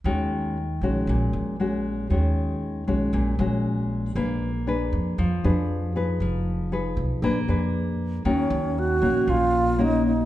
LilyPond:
<<
  \new Staff \with { instrumentName = "Alto flute" } { \time 4/4 \key ees \minor \tempo 4 = 117 r1 | r1 | r1 | r1 |
des'4 ges'4 f'4 ees'8 ees'8 | }
  \new Staff \with { instrumentName = "Nylon-string guitar" } { \time 4/4 \key ees \minor << { <aes des' ges'>4 r8 <aes des' ges'>4. <aes des' ges'>4 | <aes des' ges'>4. <aes des' ges'>4 <aes des' ges'>4. | <d' aes' ces''>8 r8 <d' aes' ces''>4 r8 <d' aes' ces''>4 <ees' aes' ces''>8~ | <ees' aes' ces''>4 <ees' aes' ces''>4 <d' aes' ces''>8 <d' aes' ces''>4. |
<bes des' ges'>4. <bes des'>4. <bes des' ges'>8 r8 | } \\ { ees2 bes,2 | ees2 bes,2 | bes2 f2 | f2 bes2 |
ees2 bes,2 | } >> }
  \new Staff \with { instrumentName = "Upright bass" } { \clef bass \time 4/4 \key ees \minor ees,4. bes,,8 bes,,8 bes,,4. | ees,4. bes,,8 bes,,8 bes,,4. | bes,,4. f,8 f,8 f,4. | f,,4. ces,8 bes,,8 f,4. |
ees,8 ees,4 bes,,8 bes,,2 | }
>>